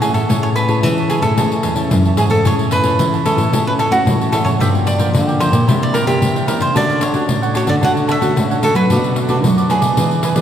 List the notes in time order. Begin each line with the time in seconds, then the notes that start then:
Already playing: E3
0.01 C#4 E4 G#4 C#5 E5 A5, pandeiro
0.14 A2 A4 C#5 E5 A5, pandeiro
0.29 A2 A3 C#4 E4 G#4 C#5 E5 A5, pandeiro
0.43 C#5, pandeiro
0.55 G#4 B4 C#5 E5 A5, pandeiro
0.67 C#4 E4 G#4 C#5 E5 A5, pandeiro
0.83 E3, pandeiro
0.98 C#5 E5 A5, pandeiro
1.09 C#4 E4 G#4 C#5 E5 A5, pandeiro
1.22 A2 A4 C#5 E5 A5, pandeiro
1.37 A3 C#4 E4 G#4 C#5 E5 A5, pandeiro
1.52 pandeiro
1.63 E2 G#4 C#5 E5 A5, pandeiro
1.75 C#4 E4 C#5 E5 A5, pandeiro
1.90 F#2 E3, pandeiro
2.05 C#5 E5 A5, pandeiro
2.17 G#2 C#4 E4 G#4 C#5 E5 A5, pandeiro
2.30 A4 C#5 E5 A5, pandeiro
2.45 A2 G#3 C#4 E4 G#4 C#5 E5 A5, pandeiro
2.59 pandeiro
2.71 G#4 B4 C#5 E5 A5, pandeiro
2.84 G#3 C#4 E4 G#4 C#5 E5 A5, pandeiro
2.99 E3, pandeiro
3.14 C#5 E5 A5, pandeiro
3.25 G#3 C#4 E4 G#4 A4 C#5 E5 A5, pandeiro
3.37 A2 C#5 E5 A5, pandeiro
3.52 A2 G#3 A3 C#4 E4 G#4 C#5 E5 A5, pandeiro
3.67 B4, pandeiro
3.79 G#4 A4 C#5 E5 A5, pandeiro
3.91 A2 G#3 C#4 E4 F#4 C#5 E5 A5, pandeiro
4.06 A2 E3, pandeiro
4.20 C#5 E5 A5, pandeiro
4.32 G#3 C#4 E4 G#4 A4 C#5 E5 A5, pandeiro
4.45 A2 C#5 E5 A5, pandeiro
4.59 G2 F3 A#3 D4 F4 A#4 D5 E5 G5, pandeiro
4.75 pandeiro
4.85 F4 A#4 D5 G5, pandeiro
4.98 F3 A#3 D4 F4 A#4 D5 G5, pandeiro
5.14 D3, pandeiro
5.27 A#4 D5 G5, pandeiro
5.39 F3 A#3 D4 F4 A#4 C5 D5 G5, pandeiro
5.52 A#2 A#4 D5 G5, pandeiro
5.67 C3 E3 A#3 D4 E4 A#4 C5 E5, pandeiro
5.83 D5, pandeiro
5.93 E4 A#4 C5 E5, pandeiro
6.05 C3 E3 A#3 D4 G4 A#4 C5 E5, pandeiro
6.22 G2 C3, pandeiro
6.35 A#4 C5 E5, pandeiro
6.47 E3 A#3 D4 E4 A#4 C5 E5, pandeiro
6.59 C3 A#4 C5 E5, pandeiro
6.74 D3 A3 C#4 D4 F#4 A4 C#5 D5 F#5, pandeiro
6.90 pandeiro
7.00 D4 A4 C#5 F#5, pandeiro
7.13 A3 C#4 D4 F#4 A4 C#5 F#5, pandeiro
7.29 A2, pandeiro
7.42 A4 C#5 F#5, pandeiro
7.54 A3 C#4 D4 F#4 A4 C#5 F#5, pandeiro
7.67 D3 A4 C#5 D5 F#5, pandeiro
7.81 D3 A3 C#4 D4 F#4 A4 C#5 F#5, pandeiro
7.97 pandeiro
8.07 D4 A4 C#5 E5 F#5, pandeiro
8.21 D3 A3 C#4 F#4 A4 C#5 F#5, pandeiro
8.36 A2 D3, pandeiro
8.50 A4 C#5 F#5, pandeiro
8.62 A3 C#4 D4 F#4 A4 C#5 F#5, pandeiro
8.74 F#3 A4 B4 C#5 F#5, pandeiro
8.90 B2 A3 D4 F#4 A4 B4 D5, pandeiro
9.04 pandeiro
9.15 D4 A4 B4 D5, pandeiro
9.28 A3 D4 F#4 A4 B4 D5, pandeiro
9.44 F#2 F#3, pandeiro
9.57 A4 B4 D5, pandeiro
9.69 A3 D4 F#4 G#4 A4 B4 D5, pandeiro
9.81 B2 A4 B4 D5, pandeiro
9.96 E3 B3 D4 E4 G#4 B4 D5, pandeiro
10.11 pandeiro
10.23 E4 G#4 B4 D5, pandeiro
10.35 E3 B3 D4 G#4 B4 D5, pandeiro